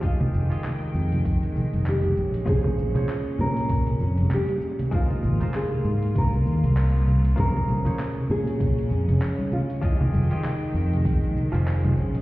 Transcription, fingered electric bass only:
X:1
M:4/4
L:1/16
Q:"Swing 16ths" 1/4=98
K:Bbdor
V:1 name="Fingered electric bass" clef=bass
z2 F,,, z3 F,,3 B,,, z F,,,3 B,,, z | B,,,2 B,,, z3 B,,4 F,, F,,, z4 | z2 A,,, z3 A,,3 C,, E,, C,,4- C,, | B,,,2 B,,, z3 B,,4 F,, F,,, z4 |
z2 F,,, z3 F,,3 B,,, z F,,,3 B,,, z |]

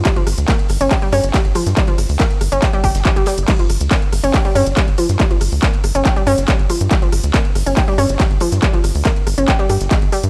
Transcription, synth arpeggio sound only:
X:1
M:4/4
L:1/16
Q:1/4=140
K:none
V:1 name="Synth arpeggio sound" clef=bass
G, F, z2 _B, z2 ^C G G, C z G, z F, z | G, F, z2 _B, z2 ^C G G, G z G, G, G, z | G, F, z2 _B, z2 ^C G G, C z G, z F, z | G, F, z2 _B, z2 ^C G G, C z G, z F, z |
G, F, z2 _B, z2 ^C G G, C z G, z F, z | G, F, z2 _B, z2 ^C G G, G, z _A, z G, z |]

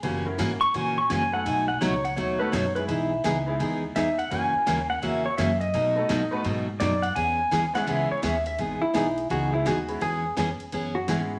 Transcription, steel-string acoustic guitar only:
X:1
M:4/4
L:1/16
Q:"Swing" 1/4=168
K:E
V:1 name="Steel-string acoustic guitar"
[C,E,^A,CF]2 z2 [C,E,A,CF] z3 [C,E,A,CF]2 z2 [C,E,A,CF] z3 | [B,,F,A,DF]2 z2 [B,,F,A,DF] z3 [B,,F,A,DF]2 z2 [B,,F,A,DF] z3 | [E,B,DG]2 z2 [E,B,DG] z3 [E,B,DG]2 z2 [E,B,DG] z3 | [C,E,^A,CF]2 z2 [C,E,A,CF] z3 [C,E,A,CF]2 z2 [C,E,A,CF] z3 |
[B,,F,A,DF]2 z2 [B,,F,A,DF] z3 [B,,F,A,DF]2 z2 [B,,F,A,DF] z3 | [E,B,CG]2 z2 [E,B,CG] z3 [E,B,CG]2 z2 [E,B,CG] z3 | [E,B,DG]2 z2 [E,B,DG] z3 [E,B,DG]2 z2 [E,B,DG] z3 | [E,B,CG]2 z2 [E,B,CG] z3 [E,B,CG]2 z2 [E,B,CG] z3 |]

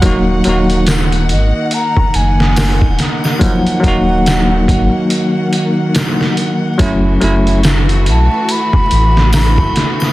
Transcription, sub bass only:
X:1
M:4/4
L:1/16
Q:"Swing 16ths" 1/4=71
K:Gb
V:1 name="Sub bass" clef=bass
E,,,2 E,,,4 A,,, z3 G,,,3 E,,, z2 | z2 E,,,4 A,,, z8 z | G,,,2 G,,,4 C,, z3 =A,,,3 G,,, z2 |]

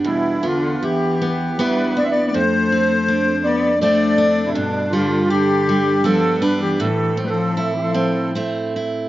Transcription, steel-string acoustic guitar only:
X:1
M:3/4
L:1/8
Q:1/4=80
K:Am
V:1 name="Steel-string acoustic guitar"
E,, B, E B, [B,DE] E | F,, C D2 [A,CD] D | G,, G, D G, [G,B,D] D | A,, C E C [A,CE] E |]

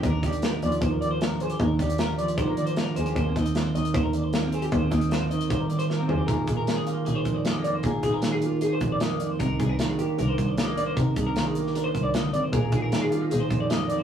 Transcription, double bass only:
X:1
M:4/4
L:1/8
Q:1/4=154
K:Bbmix
V:1 name="Double bass" clef=bass
E,, E,,2 E,, E,,4 | E,, E,,3 E,3 E,, | E,, E,,2 E,, E,,4 | E,, E,,3 E,3 E,, |
B,,, B,,, z2 B,,, B,,,3 | B,, B,,,4 B,,, z2 | C,, C,, z2 C,, C,,3 | C, C,,4 C,, z2 |
B,,, B,,, z2 B,,, B,,,3 |]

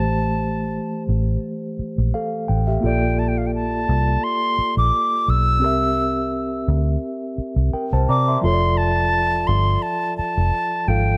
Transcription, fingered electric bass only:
X:1
M:4/4
L:1/16
Q:"Swing 16ths" 1/4=86
K:F
V:1 name="Fingered electric bass" clef=bass
A,,,6 A,,,2 z3 B,,, z2 A,,,2 | B,,,6 C,,2 z3 B,,, z2 =B,,,2 | C,,6 D,,2 z3 C,, z C,, C,2 | F,,,6 G,,,2 z3 F,,, z2 _A,,,2 |]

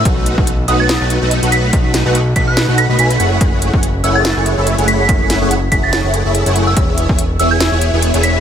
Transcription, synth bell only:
X:1
M:4/4
L:1/16
Q:"Swing 16ths" 1/4=143
K:F#dor
V:1 name="Synth bell"
z6 d' a' z6 b' z | z6 b' f' z2 b' z b'2 z2 | z6 e' a' z6 b' z | b' z4 z b' a' a' z6 e' |
z6 e' g' z6 b' z |]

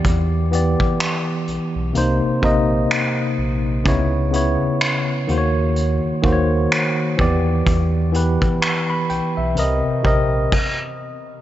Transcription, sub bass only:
X:1
M:4/4
L:1/16
Q:"Swing 16ths" 1/4=63
K:Elyd
V:1 name="Sub bass" clef=bass
E,,3 B,,, z2 B,,, B,,, =C,, _B,,, B,,,2 z2 B,,,2 | C,,3 D,, z2 D,,3 D,, D,,2 z2 E,,2 | E,,3 B,,, z2 B,,, B,,, =C,, _B,,, B,,,2 z4 |]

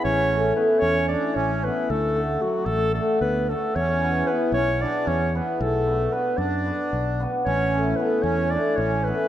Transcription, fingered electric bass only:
X:1
M:7/8
L:1/8
Q:1/4=113
K:A
V:1 name="Fingered electric bass" clef=bass
A,,,3 E,,2 A,,,2 | D,,3 A,,,2 D,,2 | E,,3 B,,,2 E,,2 | B,,,3 F,,2 B,,,2 |
A,,,3 E,,2 A,,,2 |]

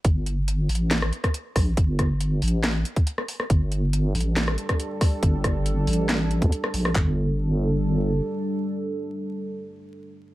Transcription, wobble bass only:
X:1
M:4/4
L:1/16
Q:1/4=139
K:Cmix
V:1 name="Wobble bass" clef=bass
G,,,6 A,,,4 z4 B,,,2 | G,,,6 A,,,4 z6 | G,,,6 A,,,4 z6 | G,,,6 A,,,4- A,,, E,, z2 B,,,2 |
G,,,12 z4 | z16 |]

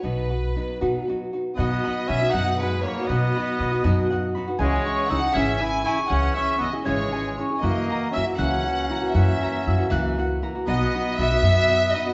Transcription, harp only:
X:1
M:6/8
L:1/8
Q:3/8=79
K:B
V:1 name="Harp"
z6 | f b d' f' f b | f b d' f' f b | g c' e' g' g c' |
g c' e' g' g c' | f a e' f' f a | f a e' f' f a | f b d' f' f b |]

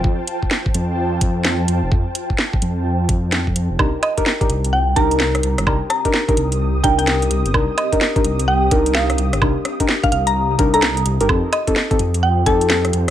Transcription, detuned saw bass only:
X:1
M:4/4
L:1/16
Q:"Swing 16ths" 1/4=128
K:Cdor
V:1 name="Detuned saw bass" clef=bass
F,, z4 z F,,4 F,,4 F,, F,,, | F,, z4 z F,,4 F,,4 F,, F,,, | C,, z4 z C,,4 C,,4 C,, G,,, | C,, z4 z C,,4 C,,4 C,, G,,, |
C,, z4 z C,,4 C,,4 C,, G,,, | C,, z4 z C,,4 C,,4 C,, G,,, | F,, z4 z F,,4 F,,4 F,, z |]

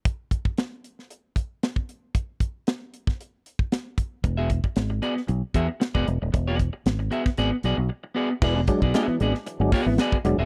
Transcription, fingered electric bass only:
X:1
M:4/4
L:1/16
Q:1/4=115
K:Emix
V:1 name="Fingered electric bass" clef=bass
z16 | z16 | E,,,3 z G,,,2 z2 B,,, z E,, z2 E,,, E,,, ^D,,, | E,,,3 z G,,,2 z2 G,,, z B,,, B,,, z4 |
E,,,2 z B,,, z2 G,,, z2 =G,,, z ^G,,, z2 E,,, ^D,,, |]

